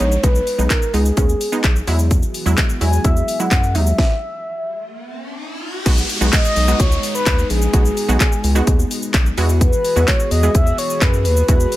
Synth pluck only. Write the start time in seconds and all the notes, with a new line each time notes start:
0.00 G#3 B3 D#4
0.23 G#3 B3 D#4
0.58 G#3 B3 D#4
0.94 G#3 B3 D#4
1.17 G#3 B3 C#4
1.52 G#3 B3 D#4
1.87 F#3 G#3 E4
2.46 F#3 G#3 E4
2.81 F#3 G#3 E4
3.04 F#3 G#3 E4
3.40 F#3 G#3 E4
3.75 F#3 G#3 D#4
5.86 G#3 B3 D#4 F#4
6.21 G#3 B3 D#4 F#4
6.68 G#3 B3 D#4 F#4
7.73 G#3 B3 D#4 F#4
8.08 G#3 B3 D#4 F#4
8.55 G#3 B3 D#4 F#4
9.37 G#3 B3 E4 F#4
9.96 G#3 B3 E4 F#4
10.43 G#3 B3 E4 G#4
11.48 G#3 B3 E4 F#4